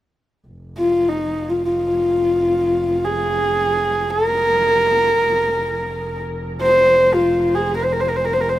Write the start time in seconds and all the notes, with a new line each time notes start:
0.47 F1
0.78 F4
1.08 D#4
1.49 F4
1.65 F4
3.04 G#4
4.10 A#4
5.25 F1
6.62 C5
7.14 F4
7.55 G#4
7.76 A#4
7.84 C5
7.92 A#4
8.00 C5
8.09 A#4
8.16 C5
8.25 A#4
8.33 C5
8.41 A#4
8.49 C5